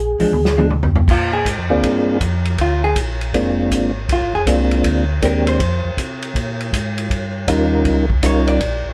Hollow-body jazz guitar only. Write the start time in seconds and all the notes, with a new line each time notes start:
0.20 F3 G#3 D4
0.57 F3 G#3 D4
1.11 F4
1.33 G#4
2.61 F4
2.84 G#4
4.13 F4
4.35 G#4
5.25 A#4
5.48 C5
8.26 C#5
8.48 D5